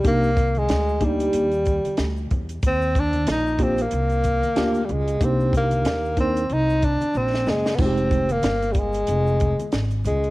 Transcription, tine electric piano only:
X:1
M:4/4
L:1/8
Q:"Swing 16ths" 1/4=93
K:Cm
V:1 name="Tine electric piano"
[B,DEG] z2 [B,DEG] z4 | z3 [B,DFG] z2 [B,DFG] z | [B,DEG]3 [B,DEB] z4 | [A,CEFG] z6 z |]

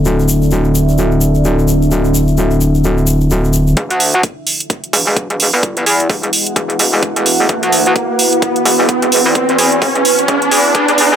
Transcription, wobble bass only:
X:1
M:4/4
L:1/16
Q:"Swing 16ths" 1/4=129
K:Dmix
V:1 name="Wobble bass" clef=bass
D,,,16- | D,,,16 | E,,, D,,3 z6 E,,, E,,,2 E,,,2 G,,,- | G,,,2 E,,2 E,,, E,,, z2 E,,,2 E,,, E,,,2 E,,,3 |
E,,, D,,3 z6 E,,, E,,,2 E,,,2 G,,,- | G,,,2 E,,2 E,,, E,,, z2 E,,,2 E,,3 E,,3 |]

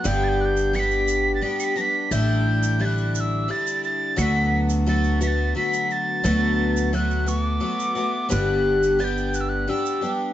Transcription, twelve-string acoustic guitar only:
X:1
M:3/4
L:1/8
Q:1/4=87
K:D
V:1 name="Twelve-string acoustic guitar"
[G,,D,G,B,DG]2 [G,B,DG]2 [G,B,DG] [G,B,DG] | [A,,D,G,DE]2 [D,G,DE]2 [D,G,DE]2 | [D,F,A,B,F]2 [F,A,B,F] [A,B,F] [F,A,B,F]2 | [D,F,A,B,F]2 [F,A,B,F] [A,B,F] [F,A,B,F] [A,B,F] |
[G,,D,G,B,DG]2 [G,B,DG]2 [G,B,DG] [G,B,DG] |]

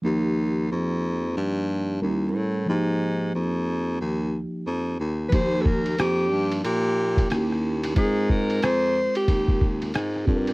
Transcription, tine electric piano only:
X:1
M:4/4
L:1/8
Q:"Swing 16ths" 1/4=91
K:Eb
V:1 name="Tine electric piano"
[F,B,EG]6 [G,_DE_FB]2 | [F,B,EG]6- [F,B,EG] z | [F,B,EG]6 [B,_D_F_G=G]2 | [A,CFAB]6- [A,CFAB] [CFG=AB] |]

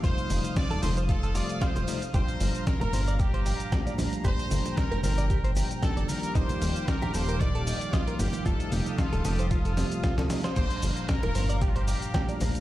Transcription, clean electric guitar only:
X:1
M:4/4
L:1/16
Q:"Swing 16ths" 1/4=114
K:Gm
V:1 name="Clean electric guitar"
F z4 A A c F A F z f c z2 | G z4 B c d G c G z g d z2 | G z4 B c d G c G z g d z2 | E z4 G A B E A E z e B z2 |
F z4 A A c F A C z F A z c | G z4 B c d G c G z g d z2 |]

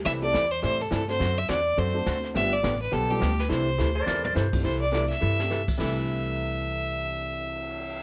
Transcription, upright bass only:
X:1
M:4/4
L:1/8
Q:"Swing" 1/4=209
K:C
V:1 name="Upright bass" clef=bass
C,,2 E,,2 A,,2 G,,2 | ^F,,2 E,,2 F,,2 D,,2 | G,,,2 A,,,2 B,,,2 D,,2 | C,,2 D,,2 E,,2 G,,2 |
C,,4 G,,4 | C,,8- | C,,8 |]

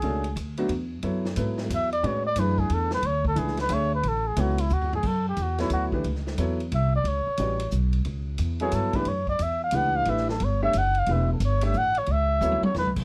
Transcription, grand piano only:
X:1
M:3/4
L:1/8
Q:"Swing" 1/4=179
K:Dlyd
V:1 name="Grand piano"
[A,CDFA] z2 [F,A,B,DF] z2 | [F,B,EAc] z [F,B,EAB]3 z | [G,CFBd] z [E,A,DGB]3 z | z2 [E,A,DGB] z [A,DGce] z |
z2 [F,B,EAc] z3 | [K:F#phr] z3 [F,B,EAc]2 [E,A,DGB] | z2 [F,B,EAc] z3 | z2 [G,CFBd] z3 |
z3 [F,B,EAc]2 [E,A,DGB] | z4 [E,A,DGB]2 | [E,A,DGB] z2 [A,DGce] z2 | [E,A,DGB] z2 [A,DGce] z2 |
z2 [F,B,EAc] z3 |]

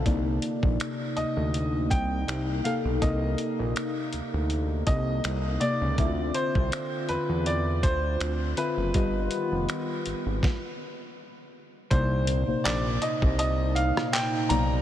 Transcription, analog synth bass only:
X:1
M:4/4
L:1/16
Q:"Swing 16ths" 1/4=81
K:Gm
V:1 name="Analog synth bass" clef=bass
C,,2 z B,,, z2 D,, D,,3 C,,2 C,,2 z =B,,, | C,,2 z B,,, z2 D,, D,,3 C,,2 C,,2 z _D,, | D,,2 z C,, z2 =E,, E,,3 D,,2 D,,2 z ^F,,, | G,,,2 z F,,, z2 _A,,, A,,, z8 |
[K:Cm] C,,3 B,,, B,,,2 z C,,4 z3 =B,,,2 |]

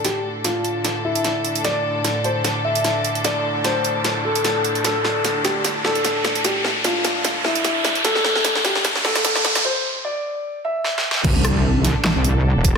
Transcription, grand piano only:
X:1
M:4/4
L:1/8
Q:"Swing 16ths" 1/4=150
K:Cmix
V:1 name="Grand piano"
G z F3 E3 | d3 c z e3 | d z c3 A3 | A3 G z A3 |
G z F3 E3 | A3 G z A3 | c z d3 e3 | z8 |]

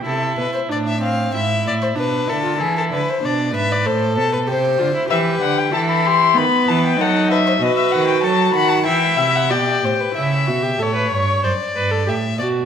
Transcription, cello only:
X:1
M:4/4
L:1/8
Q:1/4=95
K:Am
V:1 name="Cello" clef=bass
C, B,, A,,2 ^G,, A,, B,, D, | E, D, B,, ^G,, A,, B,, C, D, | E, D, E,2 ^D, E, ^F,2 | B,, ^D, ^F, D, E, C, B,, A,, |
^C, B,, A,, G,, ^F,, G,, A,, B,, |]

